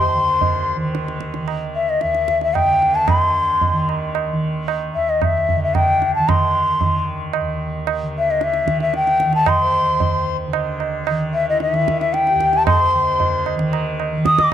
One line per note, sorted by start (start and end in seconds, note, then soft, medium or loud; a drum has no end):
0.00 2.03 D#2 medium
0.00 0.15 D3 medium
0.00 0.77 D#3 medium
0.00 0.77 C5 medium
0.00 0.69 C6 medium
0.15 2.64 D3 medium
0.41 tabla tin medium
0.41 tabla ge medium
0.77 1.40 D#3 medium
0.95 tabla te medium
1.08 tabla te medium
1.21 tabla ke medium
1.34 tabla te medium
1.40 3.72 D#3 medium
1.48 tabla na medium
1.75 1.91 E5 medium
1.90 2.03 D#5 medium
2.01 4.95 D#2 medium
2.01 2.41 E5 medium
2.01 tabla te medium
2.15 tabla te medium
2.28 tabla ke medium
2.41 2.57 E5 medium
2.41 tabla te medium
2.55 2.97 G5 medium
2.55 tabla na medium
2.55 tabla ge medium
2.65 3.09 D3 medium
2.82 tabla te medium
2.95 3.11 A5 medium
3.08 5.56 D3 medium
3.08 3.89 C6 medium
3.08 tabla na loud
3.08 tabla ge medium
3.61 tabla tin medium
3.61 tabla ge medium
3.72 4.32 D#3 medium
3.89 tabla na medium
4.15 tabla na medium
4.32 6.18 D#3 medium
4.68 tabla na medium
4.95 7.40 D#2 medium
4.95 5.11 E5 medium
5.10 5.26 D#5 medium
5.22 5.63 E5 medium
5.22 tabla na medium
5.22 tabla ge medium
5.49 tabla ge soft
5.56 8.02 D3 medium
5.64 5.77 E5 medium
5.75 6.15 G5 medium
5.75 tabla na medium
5.75 tabla ge medium
6.02 tabla te medium
6.15 6.80 D#3 medium
6.15 6.32 A5 medium
6.29 7.09 C6 medium
6.29 tabla na loud
6.29 tabla ge medium
6.80 8.64 D#3 medium
6.80 tabla tin medium
6.80 tabla ge medium
7.33 tabla na medium
7.40 9.86 D#2 medium
7.87 tabla na medium
8.03 10.47 D3 medium
8.18 8.32 E5 medium
8.31 8.45 D#5 medium
8.41 8.81 E5 medium
8.41 tabla te medium
8.54 tabla te medium
8.64 9.25 D#3 medium
8.64 tabla ke medium
8.80 8.94 E5 medium
8.80 tabla te medium
8.94 9.33 G5 medium
8.94 tabla te medium
9.07 tabla te medium
9.20 tabla ke medium
9.25 11.09 D#3 medium
9.33 9.50 A5 medium
9.33 tabla te medium
9.46 10.28 C6 medium
9.46 tabla na loud
9.46 tabla ge medium
9.62 10.37 C5 medium
9.87 12.34 D#2 medium
10.00 tabla tin medium
10.00 tabla ge medium
10.48 12.94 D3 medium
10.53 tabla na medium
10.80 tabla na medium
11.07 11.72 D#3 medium
11.07 tabla na medium
11.34 11.46 E5 medium
11.49 11.62 E4 soft
11.49 11.61 D#5 medium
11.60 11.74 D#4 soft
11.60 11.73 D#5 medium
11.60 tabla te medium
11.72 13.56 D#3 medium
11.72 12.29 E4 medium
11.72 11.98 E5 medium
11.72 tabla te medium
11.88 tabla ke medium
12.00 12.15 E5 medium
12.00 tabla te medium
12.13 12.55 G5 medium
12.13 tabla te medium
12.27 12.65 G4 medium
12.27 tabla te medium
12.34 14.54 D#2 medium
12.40 tabla ke medium
12.53 12.66 A5 medium
12.53 tabla te medium
12.65 12.80 A4 medium
12.65 12.67 C5 soft
12.65 13.42 C6 medium
12.65 tabla na loud
12.65 tabla ge medium
12.79 13.55 C5 medium
12.94 14.54 D3 medium
13.20 tabla tin medium
13.20 tabla ge medium
13.46 tabla na medium
13.56 14.17 D#3 medium
13.56 tabla ke medium
13.73 tabla na medium
14.00 tabla na medium
14.17 14.54 D#3 medium
14.25 14.41 D#6 medium
14.25 tabla ke medium
14.38 14.54 D#5 medium
14.38 14.52 D6 medium
14.38 tabla ke medium